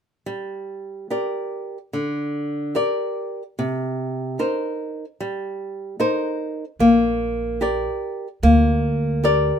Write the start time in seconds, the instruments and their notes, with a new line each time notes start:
0.26 nylon-string guitar G3
1.10 nylon-string guitar G4 A#4 D5
1.93 nylon-string guitar D3
2.75 nylon-string guitar G4 A#4 D5
3.59 nylon-string guitar C3
4.39 nylon-string guitar D#4 A#4 C5
5.20 nylon-string guitar G3
6.00 nylon-string guitar D#4 A#4 C5
6.79 upright bass A#1, nylon-string guitar A#3
7.61 nylon-string guitar G4 A#4 D5
8.43 upright bass D2, nylon-string guitar A#3
9.24 nylon-string guitar G4 A#4 D5